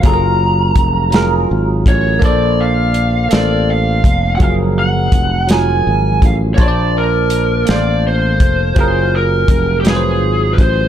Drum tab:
HH |x-xx-x|x-xx-x|x-xx-x|x-xx-x|
SD |---o--|---o--|---o--|---o--|
BD |o-o--o|o----o|o-o--o|o----o|

HH |x-xx-x|
SD |---o--|
BD |o-o--o|